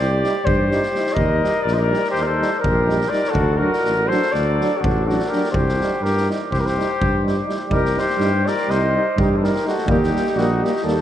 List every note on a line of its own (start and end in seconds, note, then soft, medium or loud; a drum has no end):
0.00 0.24 C2 medium
0.00 0.46 G4 medium
0.00 0.46 D5 loud
0.24 0.33 G3 medium
0.24 0.33 D#4 medium
0.24 snare soft
0.45 0.84 G2 medium
0.45 1.15 G4 medium
0.45 1.14 C5 loud
0.45 kick medium
0.71 0.80 G3 medium
0.71 0.81 D#4 medium
0.71 snare soft
0.83 snare soft
0.93 1.02 G3 soft
0.93 1.05 D#4 medium
0.93 snare soft
1.06 snare soft
1.13 1.43 D#2 medium
1.13 1.62 A#4 medium
1.13 1.63 D#5 loud
1.13 kick medium
1.42 1.52 G3 medium
1.42 1.52 D#4 medium
1.42 snare soft
1.61 1.93 A#1 loud
1.61 1.75 A#4 medium
1.61 1.76 D5 loud
1.68 snare soft
1.73 1.80 C5 medium
1.73 1.79 D#5 loud
1.78 2.10 A#4 loud
1.78 2.10 D5 loud
1.90 2.00 G3 medium
1.90 2.01 D#4 medium
1.90 snare soft
2.04 snare soft
2.10 2.42 D#2 medium
2.10 2.24 G4 medium
2.10 2.23 C5 loud
2.15 snare soft
2.21 2.29 A#4 medium
2.21 2.60 C5 loud
2.21 2.26 D5 medium
2.27 2.61 A4 medium
2.40 2.50 G3 medium
2.40 2.50 D#4 medium
2.40 snare soft
2.60 3.11 G4 medium
2.60 3.11 A#4 loud
2.64 3.03 A#1 medium
2.64 kick medium
2.87 2.97 G3 medium
2.87 2.97 D#4 medium
2.87 snare soft
3.01 snare soft
3.09 3.21 G3 medium
3.09 3.22 D#4 medium
3.09 3.33 A#4 medium
3.09 3.31 D5 loud
3.09 snare soft
3.24 snare soft
3.29 3.56 F#4 medium
3.29 3.59 A4 loud
3.34 3.61 D2 loud
3.34 kick medium
3.56 3.70 F#3 medium
3.56 3.70 D4 medium
3.56 4.11 F#4 medium
3.56 4.09 A#4 loud
3.73 snare soft
3.84 4.11 A1 medium
3.84 snare soft
4.07 4.18 F#3 medium
4.07 4.31 A4 medium
4.07 4.33 C5 loud
4.07 snare soft
4.11 4.21 D4 medium
4.22 snare soft
4.31 4.61 D2 medium
4.31 4.84 A4 medium
4.31 4.80 D5 loud
4.31 snare soft
4.59 4.69 F#3 medium
4.59 4.72 D4 medium
4.59 snare soft
4.79 5.20 A1 medium
4.79 5.09 D4 medium
4.79 5.08 F#4 medium
4.84 kick medium
5.06 5.18 F#3 medium
5.06 5.16 D4 medium
5.06 5.31 F#4 medium
5.06 5.28 A4 medium
5.06 snare soft
5.20 snare soft
5.27 5.51 G4 medium
5.27 5.51 A#4 medium
5.32 5.42 F#3 soft
5.32 5.41 D4 medium
5.32 snare soft
5.44 snare soft
5.51 5.80 C2 medium
5.51 6.03 G4 medium
5.51 6.04 C5 medium
5.51 kick medium
5.69 snare soft
5.81 5.90 G3 medium
5.81 5.90 D#4 soft
5.81 snare soft
6.01 6.29 G2 medium
6.01 6.29 G4 medium
6.01 6.29 A#4 medium
6.01 snare soft
6.17 snare soft
6.29 6.38 G3 medium
6.29 6.39 D#4 medium
6.29 snare soft
6.51 6.78 C2 medium
6.51 6.59 G4 medium
6.51 6.61 C5 medium
6.51 kick medium
6.51 snare soft
6.59 6.67 G4 medium
6.59 6.67 A#4 medium
6.66 7.48 G4 medium
6.66 7.47 C5 medium
6.66 snare soft
6.77 6.87 G3 soft
6.77 6.87 D#4 medium
6.77 snare soft
7.01 7.39 G2 medium
7.01 kick medium
7.25 7.34 G3 medium
7.25 7.34 D#4 soft
7.25 snare soft
7.45 7.56 G3 medium
7.45 7.55 D#4 medium
7.50 snare soft
7.70 7.97 C2 medium
7.70 7.80 G3 medium
7.70 7.81 D#4 medium
7.70 7.99 G4 medium
7.70 8.00 A#4 medium
7.70 kick medium
7.85 snare soft
7.95 8.05 G3 medium
7.95 8.06 D#4 medium
7.95 8.50 G4 medium
7.95 8.47 C5 loud
7.95 snare soft
8.09 snare soft
8.17 8.46 G2 medium
8.17 8.28 G3 medium
8.17 8.29 D#4 medium
8.17 snare soft
8.45 8.54 G3 soft
8.45 8.55 D#4 soft
8.45 8.72 A#4 medium
8.45 8.71 D5 loud
8.45 snare soft
8.58 snare soft
8.67 8.96 C2 medium
8.67 8.78 G3 medium
8.67 8.81 D#4 medium
8.67 9.19 C5 loud
8.67 9.18 D#5 medium
8.67 snare soft
8.95 9.04 G3 medium
8.95 9.05 D#4 medium
9.17 9.55 G2 medium
9.17 9.27 G3 medium
9.17 9.29 D#4 medium
9.17 9.38 G4 medium
9.17 kick medium
9.21 9.38 D#4 medium
9.36 9.47 A4 soft
9.36 9.45 C5 medium
9.42 9.51 G3 medium
9.42 9.52 D#4 medium
9.42 9.66 G4 medium
9.42 9.65 A#4 medium
9.42 snare soft
9.55 snare soft
9.65 9.75 G3 medium
9.65 9.74 D#4 medium
9.65 9.93 F#4 medium
9.65 9.89 A4 medium
9.65 snare soft
9.78 snare soft
9.86 10.13 D#2 medium
9.86 9.96 G3 medium
9.86 9.98 A#3 medium
9.86 10.38 G4 loud
9.86 kick medium
9.91 10.40 D#4 medium
10.03 snare soft
10.13 10.22 G3 medium
10.13 10.24 A#3 medium
10.13 snare soft
10.26 snare soft
10.35 10.62 A#1 medium
10.35 10.46 G3 medium
10.35 10.47 A#3 medium
10.35 10.65 F#4 medium
10.35 snare soft
10.40 10.65 D#4 medium
10.62 10.71 G3 medium
10.62 10.72 A#3 medium
10.62 10.86 D#4 medium
10.62 10.85 G4 medium
10.62 snare soft
10.76 snare soft
10.83 11.01 D#2 medium
10.83 10.95 G3 medium
10.83 10.94 A#3 medium
10.83 11.01 D#4 medium
10.83 11.01 A4 medium
10.88 snare soft